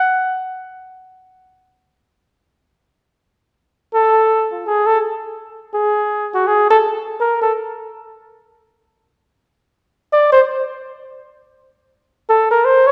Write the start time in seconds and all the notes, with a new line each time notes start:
Already playing: F#5
3.94 A4
4.52 F4
4.66 G#4
4.86 A4
5.74 G#4
6.34 F#4
6.47 G#4
6.70 A4
7.20 A#4
7.41 A4
10.13 D5
10.32 C5
12.29 A4
12.51 A#4
12.65 C5
12.87 C#5